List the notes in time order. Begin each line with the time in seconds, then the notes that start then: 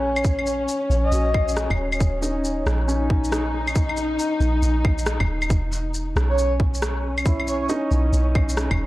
Already playing: A#1 C#4
0.16 claves, shaker
0.24 kick, shaker
0.39 claves
0.47 shaker
0.68 shaker
0.90 A#1, shaker
1.04 D#5
1.12 A#1 F#4, shaker
1.34 kick, claves
1.48 shaker
1.57 cross-stick, shaker
1.70 D#1, kick, claves
1.92 claves, shaker
2.00 D#1, kick, shaker
2.22 D#4, shaker
2.45 shaker
2.66 A#1, cross-stick, shaker
2.88 C#4 D#4, shaker
3.10 kick
3.24 shaker
3.32 D#4, cross-stick, shaker
3.67 claves, shaker
3.75 kick, shaker
3.89 claves
3.97 shaker
4.19 shaker
4.40 A#1, shaker
4.62 A#1, shaker
4.85 kick, claves
4.98 shaker
5.06 cross-stick, shaker
5.20 D#1, kick, claves
5.42 claves, shaker
5.50 E1, kick, shaker
5.72 shaker
5.94 shaker
6.16 B1, cross-stick, shaker
6.21 C#4
6.29 C#5
6.39 shaker
6.60 kick
6.74 shaker
6.82 cross-stick, shaker
7.18 claves, shaker
7.26 E4, kick, shaker
7.40 claves
7.47 C#5, shaker
7.61 C#5
7.69 D#4, shaker
7.91 B1, shaker
8.13 B1, shaker
8.35 kick, claves
8.49 shaker
8.57 cross-stick, shaker
8.71 E1, kick, claves